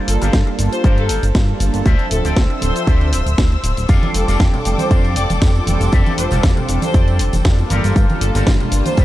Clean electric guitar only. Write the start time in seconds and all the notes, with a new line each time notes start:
0.21 G4 A4 A#4 F5
0.47 muted clean electric guitar stroke
0.59 muted clean electric guitar stroke
0.84 G4 A4 A#4 F5
1.60 muted clean electric guitar stroke
1.74 muted clean electric guitar stroke
1.85 F4 C5 D5 E5
2.25 F4 C5 D5 G5
2.50 muted clean electric guitar stroke
2.62 muted clean electric guitar stroke
2.87 F4 C5 D5 E5
3.63 muted clean electric guitar stroke
3.77 muted clean electric guitar stroke
3.88 G4 A4 D5 F5
4.28 G4 A4 D5 F5
4.53 muted clean electric guitar stroke
4.66 muted clean electric guitar stroke
4.90 G4 A4 D5 F5
5.67 muted clean electric guitar stroke
5.81 muted clean electric guitar stroke
5.92 G4 A4 D5 E5
6.31 G4 A4 D5 F5
6.57 muted clean electric guitar stroke
6.68 muted clean electric guitar stroke
6.94 G4 A4 D5 G5
7.70 G4 A4 A#4 F5
8.35 G4 A4 A#4 F5
8.61 muted clean electric guitar stroke
8.72 muted clean electric guitar stroke
8.97 G4 A4 A#4 E5